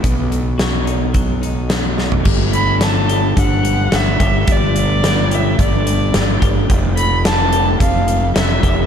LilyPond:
<<
  \new Staff \with { instrumentName = "Violin" } { \time 4/4 \key g \major \tempo 4 = 108 r1 | r8 b''8 a''4 fis''4 e''4 | d''4. e''8 d''4. r8 | r8 b''8 a''4 f''4 e''4 | }
  \new Staff \with { instrumentName = "Clean electric guitar" } { \time 4/4 \key g \major b,4 fis'8 dis'8 fis8 dis'8 a8 dis'8 | g8 a8 d'8 g'8 a8 g8 a8 g'8 | g8 a8 d'8 g'8 a8 g8 a8 g'8 | f8 a8 c'8 g'8 a8 f8 a8 g'8 | }
  \new Staff \with { instrumentName = "Fingered electric bass" } { \clef bass \time 4/4 \key g \major b,,1 | g,,2 g,,4 g,,8 g,,8 | g,,2 g,,4 g,,8 g,,8 | f,,2 f,,4 f,,8 f,,8 | }
  \new DrumStaff \with { instrumentName = "Drums" } \drummode { \time 4/4 <hh bd>8 hh8 <hh sn>8 hh8 <hh bd>8 hh8 <hh sn>8 sn16 tomfh16 | <cymc bd>8 hh8 <hh sn>8 hh8 <hh bd>8 hh8 <hh sn>8 <hh bd>8 | <hh bd>8 hh8 <hh sn>8 hh8 <hh bd>8 hh8 <hh sn>8 <hh bd>8 | <hh bd>8 hh8 <hh sn>8 hh8 <hh bd>8 hh8 <hh sn>8 <hh bd>8 | }
>>